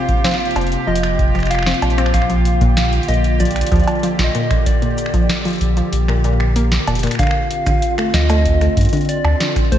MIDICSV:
0, 0, Header, 1, 7, 480
1, 0, Start_track
1, 0, Tempo, 631579
1, 1626, Time_signature, 4, 2, 24, 8
1, 7437, End_track
2, 0, Start_track
2, 0, Title_t, "Soft synth lead"
2, 0, Program_c, 0, 80
2, 0, Note_on_c, 0, 77, 112
2, 664, Note_on_c, 0, 75, 103
2, 675, Note_off_c, 0, 77, 0
2, 1143, Note_on_c, 0, 77, 102
2, 1155, Note_off_c, 0, 75, 0
2, 1504, Note_off_c, 0, 77, 0
2, 1625, Note_on_c, 0, 77, 109
2, 2343, Note_on_c, 0, 75, 90
2, 2355, Note_off_c, 0, 77, 0
2, 2584, Note_on_c, 0, 74, 95
2, 2595, Note_off_c, 0, 75, 0
2, 2900, Note_off_c, 0, 74, 0
2, 2904, Note_on_c, 0, 74, 89
2, 3224, Note_on_c, 0, 75, 88
2, 3235, Note_off_c, 0, 74, 0
2, 3544, Note_on_c, 0, 74, 96
2, 3556, Note_off_c, 0, 75, 0
2, 4985, Note_off_c, 0, 74, 0
2, 5465, Note_on_c, 0, 77, 121
2, 6186, Note_on_c, 0, 75, 115
2, 6198, Note_off_c, 0, 77, 0
2, 6908, Note_on_c, 0, 74, 105
2, 6919, Note_off_c, 0, 75, 0
2, 7386, Note_on_c, 0, 72, 98
2, 7398, Note_off_c, 0, 74, 0
2, 7437, Note_off_c, 0, 72, 0
2, 7437, End_track
3, 0, Start_track
3, 0, Title_t, "Synth texture"
3, 0, Program_c, 1, 99
3, 0, Note_on_c, 1, 67, 89
3, 5475, Note_off_c, 1, 67, 0
3, 7437, End_track
4, 0, Start_track
4, 0, Title_t, "Ambient pad"
4, 0, Program_c, 2, 92
4, 0, Note_on_c, 2, 48, 82
4, 0, Note_on_c, 2, 58, 74
4, 0, Note_on_c, 2, 65, 89
4, 1595, Note_off_c, 2, 48, 0
4, 1626, Note_on_c, 2, 50, 81
4, 3514, Note_off_c, 2, 65, 0
4, 3542, Note_on_c, 2, 67, 90
4, 5435, Note_off_c, 2, 50, 0
4, 5435, Note_off_c, 2, 58, 0
4, 5445, Note_off_c, 2, 67, 0
4, 5463, Note_on_c, 2, 50, 81
4, 5463, Note_on_c, 2, 60, 77
4, 5465, Note_on_c, 2, 65, 90
4, 7365, Note_off_c, 2, 60, 0
4, 7387, Note_on_c, 2, 62, 74
4, 7437, Note_off_c, 2, 50, 0
4, 7437, Note_off_c, 2, 62, 0
4, 7437, Note_off_c, 2, 65, 0
4, 7437, End_track
5, 0, Start_track
5, 0, Title_t, "Synth pluck"
5, 0, Program_c, 3, 84
5, 186, Note_on_c, 3, 60, 103
5, 274, Note_off_c, 3, 60, 0
5, 426, Note_on_c, 3, 60, 78
5, 514, Note_off_c, 3, 60, 0
5, 664, Note_on_c, 3, 53, 102
5, 753, Note_off_c, 3, 53, 0
5, 1025, Note_on_c, 3, 53, 76
5, 1113, Note_off_c, 3, 53, 0
5, 1265, Note_on_c, 3, 60, 79
5, 1379, Note_off_c, 3, 60, 0
5, 1504, Note_on_c, 3, 60, 103
5, 1593, Note_off_c, 3, 60, 0
5, 1745, Note_on_c, 3, 53, 75
5, 1833, Note_off_c, 3, 53, 0
5, 1986, Note_on_c, 3, 46, 99
5, 2074, Note_off_c, 3, 46, 0
5, 2345, Note_on_c, 3, 46, 76
5, 2433, Note_off_c, 3, 46, 0
5, 2586, Note_on_c, 3, 53, 84
5, 2699, Note_off_c, 3, 53, 0
5, 2825, Note_on_c, 3, 53, 104
5, 2913, Note_off_c, 3, 53, 0
5, 3065, Note_on_c, 3, 53, 85
5, 3153, Note_off_c, 3, 53, 0
5, 3305, Note_on_c, 3, 46, 104
5, 3393, Note_off_c, 3, 46, 0
5, 3664, Note_on_c, 3, 46, 78
5, 3753, Note_off_c, 3, 46, 0
5, 3905, Note_on_c, 3, 53, 76
5, 4019, Note_off_c, 3, 53, 0
5, 4145, Note_on_c, 3, 53, 101
5, 4233, Note_off_c, 3, 53, 0
5, 4384, Note_on_c, 3, 53, 77
5, 4473, Note_off_c, 3, 53, 0
5, 4624, Note_on_c, 3, 46, 103
5, 4713, Note_off_c, 3, 46, 0
5, 4745, Note_on_c, 3, 46, 104
5, 4859, Note_off_c, 3, 46, 0
5, 4985, Note_on_c, 3, 58, 84
5, 5073, Note_off_c, 3, 58, 0
5, 5225, Note_on_c, 3, 46, 76
5, 5313, Note_off_c, 3, 46, 0
5, 5345, Note_on_c, 3, 46, 102
5, 5459, Note_off_c, 3, 46, 0
5, 5466, Note_on_c, 3, 50, 102
5, 5553, Note_off_c, 3, 50, 0
5, 5827, Note_on_c, 3, 50, 79
5, 5914, Note_off_c, 3, 50, 0
5, 6066, Note_on_c, 3, 57, 75
5, 6180, Note_off_c, 3, 57, 0
5, 6307, Note_on_c, 3, 57, 103
5, 6394, Note_off_c, 3, 57, 0
5, 6546, Note_on_c, 3, 57, 75
5, 6633, Note_off_c, 3, 57, 0
5, 6785, Note_on_c, 3, 50, 103
5, 6873, Note_off_c, 3, 50, 0
5, 7146, Note_on_c, 3, 50, 76
5, 7233, Note_off_c, 3, 50, 0
5, 7387, Note_on_c, 3, 57, 83
5, 7437, Note_off_c, 3, 57, 0
5, 7437, End_track
6, 0, Start_track
6, 0, Title_t, "Sub bass"
6, 0, Program_c, 4, 38
6, 425, Note_on_c, 4, 29, 102
6, 580, Note_off_c, 4, 29, 0
6, 665, Note_on_c, 4, 29, 84
6, 1317, Note_off_c, 4, 29, 0
6, 1385, Note_on_c, 4, 34, 90
6, 2277, Note_off_c, 4, 34, 0
6, 2345, Note_on_c, 4, 34, 99
6, 2757, Note_off_c, 4, 34, 0
6, 2825, Note_on_c, 4, 38, 85
6, 2903, Note_off_c, 4, 38, 0
6, 3185, Note_on_c, 4, 34, 91
6, 3263, Note_off_c, 4, 34, 0
6, 4265, Note_on_c, 4, 34, 101
6, 4420, Note_off_c, 4, 34, 0
6, 4505, Note_on_c, 4, 34, 85
6, 5157, Note_off_c, 4, 34, 0
6, 5225, Note_on_c, 4, 29, 87
6, 5380, Note_off_c, 4, 29, 0
6, 6185, Note_on_c, 4, 38, 101
6, 6597, Note_off_c, 4, 38, 0
6, 6666, Note_on_c, 4, 43, 82
6, 6743, Note_off_c, 4, 43, 0
6, 7026, Note_on_c, 4, 38, 88
6, 7103, Note_off_c, 4, 38, 0
6, 7437, End_track
7, 0, Start_track
7, 0, Title_t, "Drums"
7, 66, Note_on_c, 9, 36, 103
7, 66, Note_on_c, 9, 42, 39
7, 142, Note_off_c, 9, 36, 0
7, 142, Note_off_c, 9, 42, 0
7, 186, Note_on_c, 9, 38, 105
7, 186, Note_on_c, 9, 42, 89
7, 203, Note_off_c, 9, 38, 0
7, 203, Note_on_c, 9, 38, 92
7, 220, Note_off_c, 9, 38, 0
7, 220, Note_on_c, 9, 38, 73
7, 237, Note_off_c, 9, 38, 0
7, 237, Note_on_c, 9, 38, 60
7, 255, Note_off_c, 9, 38, 0
7, 255, Note_on_c, 9, 38, 50
7, 262, Note_off_c, 9, 42, 0
7, 272, Note_off_c, 9, 38, 0
7, 272, Note_on_c, 9, 38, 40
7, 289, Note_off_c, 9, 38, 0
7, 289, Note_on_c, 9, 38, 33
7, 306, Note_on_c, 9, 42, 17
7, 346, Note_off_c, 9, 42, 0
7, 346, Note_on_c, 9, 42, 20
7, 365, Note_off_c, 9, 38, 0
7, 386, Note_off_c, 9, 42, 0
7, 386, Note_on_c, 9, 42, 23
7, 426, Note_off_c, 9, 42, 0
7, 426, Note_on_c, 9, 42, 63
7, 426, Note_on_c, 9, 56, 88
7, 466, Note_off_c, 9, 42, 0
7, 466, Note_on_c, 9, 42, 31
7, 502, Note_off_c, 9, 56, 0
7, 506, Note_off_c, 9, 42, 0
7, 506, Note_on_c, 9, 42, 34
7, 546, Note_off_c, 9, 42, 0
7, 546, Note_on_c, 9, 42, 38
7, 622, Note_off_c, 9, 42, 0
7, 726, Note_on_c, 9, 42, 88
7, 786, Note_off_c, 9, 42, 0
7, 786, Note_on_c, 9, 26, 61
7, 786, Note_on_c, 9, 42, 37
7, 862, Note_off_c, 9, 26, 0
7, 862, Note_off_c, 9, 42, 0
7, 906, Note_on_c, 9, 36, 113
7, 906, Note_on_c, 9, 42, 36
7, 982, Note_off_c, 9, 36, 0
7, 982, Note_off_c, 9, 42, 0
7, 1026, Note_on_c, 9, 26, 24
7, 1026, Note_on_c, 9, 42, 18
7, 1056, Note_off_c, 9, 26, 0
7, 1056, Note_on_c, 9, 26, 27
7, 1065, Note_off_c, 9, 42, 0
7, 1065, Note_on_c, 9, 42, 23
7, 1085, Note_off_c, 9, 26, 0
7, 1085, Note_on_c, 9, 26, 31
7, 1106, Note_off_c, 9, 42, 0
7, 1106, Note_on_c, 9, 42, 30
7, 1116, Note_off_c, 9, 26, 0
7, 1116, Note_on_c, 9, 26, 34
7, 1145, Note_off_c, 9, 26, 0
7, 1145, Note_off_c, 9, 42, 0
7, 1145, Note_on_c, 9, 26, 36
7, 1145, Note_on_c, 9, 42, 88
7, 1176, Note_off_c, 9, 26, 0
7, 1176, Note_on_c, 9, 26, 40
7, 1205, Note_off_c, 9, 26, 0
7, 1205, Note_on_c, 9, 26, 43
7, 1221, Note_off_c, 9, 42, 0
7, 1235, Note_off_c, 9, 26, 0
7, 1235, Note_on_c, 9, 26, 46
7, 1265, Note_on_c, 9, 38, 114
7, 1265, Note_on_c, 9, 42, 17
7, 1311, Note_off_c, 9, 26, 0
7, 1325, Note_off_c, 9, 42, 0
7, 1325, Note_on_c, 9, 42, 22
7, 1341, Note_off_c, 9, 38, 0
7, 1385, Note_off_c, 9, 42, 0
7, 1385, Note_on_c, 9, 42, 62
7, 1385, Note_on_c, 9, 56, 85
7, 1446, Note_off_c, 9, 42, 0
7, 1446, Note_on_c, 9, 42, 30
7, 1461, Note_off_c, 9, 56, 0
7, 1506, Note_off_c, 9, 42, 0
7, 1506, Note_on_c, 9, 26, 58
7, 1506, Note_on_c, 9, 42, 38
7, 1565, Note_off_c, 9, 26, 0
7, 1565, Note_on_c, 9, 26, 49
7, 1582, Note_off_c, 9, 42, 0
7, 1626, Note_off_c, 9, 26, 0
7, 1626, Note_on_c, 9, 26, 38
7, 1626, Note_on_c, 9, 36, 116
7, 1626, Note_on_c, 9, 42, 89
7, 1685, Note_off_c, 9, 26, 0
7, 1685, Note_on_c, 9, 26, 32
7, 1702, Note_off_c, 9, 36, 0
7, 1702, Note_off_c, 9, 42, 0
7, 1745, Note_on_c, 9, 42, 39
7, 1761, Note_off_c, 9, 26, 0
7, 1821, Note_off_c, 9, 42, 0
7, 1865, Note_on_c, 9, 42, 65
7, 1941, Note_off_c, 9, 42, 0
7, 1985, Note_on_c, 9, 42, 40
7, 1986, Note_on_c, 9, 36, 102
7, 2061, Note_off_c, 9, 42, 0
7, 2062, Note_off_c, 9, 36, 0
7, 2104, Note_on_c, 9, 38, 110
7, 2104, Note_on_c, 9, 42, 89
7, 2180, Note_off_c, 9, 38, 0
7, 2180, Note_off_c, 9, 42, 0
7, 2224, Note_on_c, 9, 42, 37
7, 2300, Note_off_c, 9, 42, 0
7, 2304, Note_on_c, 9, 42, 29
7, 2344, Note_off_c, 9, 42, 0
7, 2344, Note_on_c, 9, 42, 66
7, 2385, Note_off_c, 9, 42, 0
7, 2385, Note_on_c, 9, 42, 25
7, 2461, Note_off_c, 9, 42, 0
7, 2465, Note_on_c, 9, 42, 39
7, 2541, Note_off_c, 9, 42, 0
7, 2585, Note_on_c, 9, 36, 79
7, 2585, Note_on_c, 9, 42, 39
7, 2585, Note_on_c, 9, 69, 80
7, 2625, Note_off_c, 9, 42, 0
7, 2625, Note_on_c, 9, 42, 47
7, 2661, Note_off_c, 9, 36, 0
7, 2661, Note_off_c, 9, 69, 0
7, 2665, Note_off_c, 9, 42, 0
7, 2665, Note_on_c, 9, 42, 53
7, 2705, Note_off_c, 9, 42, 0
7, 2705, Note_on_c, 9, 26, 65
7, 2705, Note_on_c, 9, 42, 62
7, 2745, Note_off_c, 9, 42, 0
7, 2745, Note_on_c, 9, 42, 71
7, 2781, Note_off_c, 9, 26, 0
7, 2786, Note_off_c, 9, 42, 0
7, 2786, Note_on_c, 9, 42, 78
7, 2825, Note_on_c, 9, 36, 110
7, 2855, Note_off_c, 9, 42, 0
7, 2855, Note_on_c, 9, 42, 29
7, 2885, Note_off_c, 9, 42, 0
7, 2885, Note_on_c, 9, 42, 23
7, 2901, Note_off_c, 9, 36, 0
7, 2915, Note_off_c, 9, 42, 0
7, 2915, Note_on_c, 9, 42, 19
7, 2945, Note_off_c, 9, 42, 0
7, 2945, Note_on_c, 9, 42, 40
7, 2945, Note_on_c, 9, 56, 98
7, 2975, Note_off_c, 9, 42, 0
7, 2975, Note_on_c, 9, 42, 13
7, 3005, Note_off_c, 9, 42, 0
7, 3005, Note_on_c, 9, 42, 11
7, 3021, Note_off_c, 9, 56, 0
7, 3035, Note_off_c, 9, 42, 0
7, 3035, Note_on_c, 9, 42, 9
7, 3065, Note_off_c, 9, 42, 0
7, 3065, Note_on_c, 9, 42, 91
7, 3141, Note_off_c, 9, 42, 0
7, 3185, Note_on_c, 9, 26, 37
7, 3185, Note_on_c, 9, 38, 113
7, 3185, Note_on_c, 9, 42, 39
7, 3261, Note_off_c, 9, 26, 0
7, 3261, Note_off_c, 9, 38, 0
7, 3261, Note_off_c, 9, 42, 0
7, 3304, Note_on_c, 9, 42, 62
7, 3380, Note_off_c, 9, 42, 0
7, 3425, Note_on_c, 9, 26, 65
7, 3425, Note_on_c, 9, 36, 102
7, 3425, Note_on_c, 9, 42, 39
7, 3501, Note_off_c, 9, 26, 0
7, 3501, Note_off_c, 9, 36, 0
7, 3501, Note_off_c, 9, 42, 0
7, 3544, Note_on_c, 9, 42, 94
7, 3545, Note_on_c, 9, 36, 115
7, 3620, Note_off_c, 9, 42, 0
7, 3621, Note_off_c, 9, 36, 0
7, 3665, Note_on_c, 9, 42, 41
7, 3741, Note_off_c, 9, 42, 0
7, 3785, Note_on_c, 9, 42, 69
7, 3785, Note_on_c, 9, 69, 63
7, 3845, Note_on_c, 9, 26, 40
7, 3861, Note_off_c, 9, 42, 0
7, 3861, Note_off_c, 9, 69, 0
7, 3905, Note_on_c, 9, 36, 103
7, 3905, Note_on_c, 9, 42, 41
7, 3921, Note_off_c, 9, 26, 0
7, 3981, Note_off_c, 9, 36, 0
7, 3981, Note_off_c, 9, 42, 0
7, 4024, Note_on_c, 9, 38, 112
7, 4024, Note_on_c, 9, 42, 95
7, 4100, Note_off_c, 9, 38, 0
7, 4100, Note_off_c, 9, 42, 0
7, 4144, Note_on_c, 9, 42, 39
7, 4164, Note_off_c, 9, 42, 0
7, 4164, Note_on_c, 9, 42, 31
7, 4184, Note_off_c, 9, 42, 0
7, 4184, Note_on_c, 9, 42, 25
7, 4203, Note_off_c, 9, 42, 0
7, 4203, Note_on_c, 9, 42, 21
7, 4224, Note_off_c, 9, 42, 0
7, 4224, Note_on_c, 9, 42, 17
7, 4243, Note_off_c, 9, 42, 0
7, 4243, Note_on_c, 9, 42, 14
7, 4264, Note_off_c, 9, 42, 0
7, 4264, Note_on_c, 9, 42, 67
7, 4340, Note_off_c, 9, 42, 0
7, 4384, Note_on_c, 9, 42, 41
7, 4460, Note_off_c, 9, 42, 0
7, 4504, Note_on_c, 9, 42, 94
7, 4580, Note_off_c, 9, 42, 0
7, 4624, Note_on_c, 9, 26, 64
7, 4700, Note_off_c, 9, 26, 0
7, 4744, Note_on_c, 9, 42, 37
7, 4820, Note_off_c, 9, 42, 0
7, 4865, Note_on_c, 9, 26, 57
7, 4941, Note_off_c, 9, 26, 0
7, 4985, Note_on_c, 9, 42, 91
7, 5061, Note_off_c, 9, 42, 0
7, 5105, Note_on_c, 9, 38, 114
7, 5105, Note_on_c, 9, 42, 41
7, 5181, Note_off_c, 9, 38, 0
7, 5181, Note_off_c, 9, 42, 0
7, 5225, Note_on_c, 9, 42, 54
7, 5225, Note_on_c, 9, 56, 87
7, 5285, Note_off_c, 9, 42, 0
7, 5285, Note_on_c, 9, 42, 61
7, 5301, Note_off_c, 9, 56, 0
7, 5314, Note_off_c, 9, 42, 0
7, 5314, Note_on_c, 9, 42, 49
7, 5345, Note_off_c, 9, 42, 0
7, 5345, Note_on_c, 9, 26, 30
7, 5345, Note_on_c, 9, 42, 78
7, 5374, Note_off_c, 9, 26, 0
7, 5374, Note_off_c, 9, 42, 0
7, 5374, Note_on_c, 9, 26, 34
7, 5374, Note_on_c, 9, 42, 35
7, 5405, Note_off_c, 9, 26, 0
7, 5405, Note_off_c, 9, 42, 0
7, 5405, Note_on_c, 9, 26, 38
7, 5405, Note_on_c, 9, 42, 88
7, 5435, Note_off_c, 9, 26, 0
7, 5435, Note_on_c, 9, 26, 42
7, 5465, Note_off_c, 9, 26, 0
7, 5465, Note_off_c, 9, 42, 0
7, 5465, Note_on_c, 9, 26, 44
7, 5465, Note_on_c, 9, 36, 119
7, 5465, Note_on_c, 9, 42, 81
7, 5495, Note_off_c, 9, 26, 0
7, 5495, Note_on_c, 9, 26, 48
7, 5524, Note_off_c, 9, 26, 0
7, 5524, Note_on_c, 9, 26, 53
7, 5541, Note_off_c, 9, 36, 0
7, 5541, Note_off_c, 9, 42, 0
7, 5554, Note_off_c, 9, 26, 0
7, 5554, Note_on_c, 9, 26, 56
7, 5630, Note_off_c, 9, 26, 0
7, 5705, Note_on_c, 9, 42, 83
7, 5781, Note_off_c, 9, 42, 0
7, 5825, Note_on_c, 9, 36, 105
7, 5826, Note_on_c, 9, 26, 55
7, 5826, Note_on_c, 9, 42, 56
7, 5826, Note_on_c, 9, 69, 59
7, 5901, Note_off_c, 9, 36, 0
7, 5902, Note_off_c, 9, 26, 0
7, 5902, Note_off_c, 9, 42, 0
7, 5902, Note_off_c, 9, 69, 0
7, 5945, Note_on_c, 9, 42, 80
7, 6021, Note_off_c, 9, 42, 0
7, 6065, Note_on_c, 9, 26, 83
7, 6065, Note_on_c, 9, 42, 38
7, 6141, Note_off_c, 9, 26, 0
7, 6141, Note_off_c, 9, 42, 0
7, 6185, Note_on_c, 9, 38, 118
7, 6185, Note_on_c, 9, 42, 86
7, 6261, Note_off_c, 9, 38, 0
7, 6261, Note_off_c, 9, 42, 0
7, 6305, Note_on_c, 9, 26, 62
7, 6305, Note_on_c, 9, 42, 55
7, 6305, Note_on_c, 9, 56, 83
7, 6305, Note_on_c, 9, 69, 75
7, 6381, Note_off_c, 9, 26, 0
7, 6381, Note_off_c, 9, 42, 0
7, 6381, Note_off_c, 9, 56, 0
7, 6381, Note_off_c, 9, 69, 0
7, 6426, Note_on_c, 9, 36, 84
7, 6426, Note_on_c, 9, 42, 80
7, 6502, Note_off_c, 9, 36, 0
7, 6502, Note_off_c, 9, 42, 0
7, 6546, Note_on_c, 9, 26, 38
7, 6546, Note_on_c, 9, 42, 39
7, 6622, Note_off_c, 9, 26, 0
7, 6622, Note_off_c, 9, 42, 0
7, 6666, Note_on_c, 9, 36, 118
7, 6666, Note_on_c, 9, 42, 80
7, 6695, Note_off_c, 9, 42, 0
7, 6695, Note_on_c, 9, 42, 64
7, 6725, Note_off_c, 9, 42, 0
7, 6725, Note_on_c, 9, 42, 53
7, 6742, Note_off_c, 9, 36, 0
7, 6756, Note_off_c, 9, 42, 0
7, 6756, Note_on_c, 9, 42, 43
7, 6785, Note_off_c, 9, 42, 0
7, 6785, Note_on_c, 9, 42, 56
7, 6816, Note_off_c, 9, 42, 0
7, 6816, Note_on_c, 9, 42, 30
7, 6847, Note_off_c, 9, 42, 0
7, 6847, Note_on_c, 9, 42, 25
7, 6877, Note_off_c, 9, 42, 0
7, 6877, Note_on_c, 9, 42, 20
7, 6907, Note_off_c, 9, 42, 0
7, 6907, Note_on_c, 9, 42, 82
7, 6983, Note_off_c, 9, 42, 0
7, 7027, Note_on_c, 9, 26, 55
7, 7027, Note_on_c, 9, 56, 82
7, 7103, Note_off_c, 9, 26, 0
7, 7103, Note_off_c, 9, 56, 0
7, 7147, Note_on_c, 9, 38, 117
7, 7147, Note_on_c, 9, 42, 82
7, 7223, Note_off_c, 9, 38, 0
7, 7223, Note_off_c, 9, 42, 0
7, 7266, Note_on_c, 9, 36, 111
7, 7267, Note_on_c, 9, 26, 39
7, 7267, Note_on_c, 9, 42, 56
7, 7342, Note_off_c, 9, 36, 0
7, 7343, Note_off_c, 9, 26, 0
7, 7343, Note_off_c, 9, 42, 0
7, 7386, Note_on_c, 9, 36, 122
7, 7388, Note_on_c, 9, 42, 82
7, 7437, Note_off_c, 9, 36, 0
7, 7437, Note_off_c, 9, 42, 0
7, 7437, End_track
0, 0, End_of_file